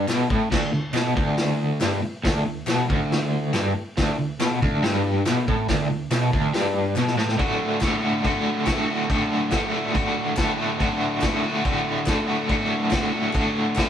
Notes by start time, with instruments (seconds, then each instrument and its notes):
0.08 overdriven electric guitar B2, snare, clap, open hi-hat
0.30 overdriven electric guitar A2, kick
0.50 overdriven electric guitar D2, kick, snare, crash
0.73 overdriven electric guitar D2
0.94 overdriven electric guitar B2, snare, clap, open hi-hat
1.16 overdriven electric guitar D2, kick
1.38 snare, open hi-hat
1.81 overdriven electric guitar G2, snare, clap, open hi-hat
2.03 muted overdriven electric guitar stroke
2.23 overdriven electric guitar D2, kick, snare, open hi-hat
2.45 overdriven electric guitar D2
2.66 overdriven electric guitar B2, snare, clap, open hi-hat
2.88 overdriven electric guitar D2, kick
3.12 snare, open hi-hat
3.54 overdriven electric guitar G2, snare, clap, open hi-hat
3.76 muted overdriven electric guitar stroke
3.97 overdriven electric guitar D2, kick, snare, open hi-hat
4.19 overdriven electric guitar D2
4.40 overdriven electric guitar B2, snare, clap, open hi-hat
4.62 overdriven electric guitar D2, kick
4.82 overdriven electric guitar G2, snare, open hi-hat
5.25 overdriven electric guitar B2, snare, clap, open hi-hat
5.47 overdriven electric guitar A2, kick
5.68 overdriven electric guitar D2, kick, snare, open hi-hat
5.90 overdriven electric guitar D2
6.11 overdriven electric guitar B2, snare, clap, open hi-hat
6.32 overdriven electric guitar D2, kick
6.54 overdriven electric guitar G2, snare, open hi-hat
6.96 overdriven electric guitar B2, snare, clap
7.07 snare
7.17 overdriven electric guitar A2, snare
7.28 snare
7.37 overdriven electric guitar D2 A2 D3 A3 F#4, kick, crash
7.80 overdriven electric guitar D2 A2 D3 A3, kick, snare, clap, crash
7.84 overdriven electric guitar F#4
8.01 overdriven electric guitar D3 A3 F#4
8.22 overdriven electric guitar A2 D3 A3 F#4, kick, crash
8.65 overdriven electric guitar A2 D3 A3 F#4, kick, snare, clap, crash
8.88 overdriven electric guitar D3 A3 F#4
9.09 overdriven electric guitar D2 A2 D3 A3 F#4, kick, crash
9.50 overdriven electric guitar D2 A2 D3 A3 F#4, kick, snare, clap, crash
9.71 overdriven electric guitar D3 A3 F#4
9.93 overdriven electric guitar A2 D3 A3 F#4, kick, crash
10.36 overdriven electric guitar A2 D3 A3 F#4, kick, snare, clap, crash
10.57 overdriven electric guitar D3 A3 F#4
10.78 overdriven electric guitar D2 A2 D3 A3 F#4, kick, crash
11.21 overdriven electric guitar D2 A2 D3 A3 F#4, kick, snare, clap, crash
11.43 overdriven electric guitar D3 A3 F#4
11.63 overdriven electric guitar A2 D3 A3 F#4, kick, crash
12.06 overdriven electric guitar A2 D3 A3 F#4, kick, snare, clap, crash
12.27 overdriven electric guitar D3 A3 F#4
12.48 overdriven electric guitar D2 A2 D3 A3, kick, crash
12.52 overdriven electric guitar F#4
12.91 overdriven electric guitar D2 A2 D3 A3 F#4, kick, snare, clap, crash
13.11 overdriven electric guitar D3 A3 F#4
13.33 overdriven electric guitar A2 D3 A3 F#4, kick, clap, crash
13.76 overdriven electric guitar A2 D3 A3 F#4, kick, snare, clap, crash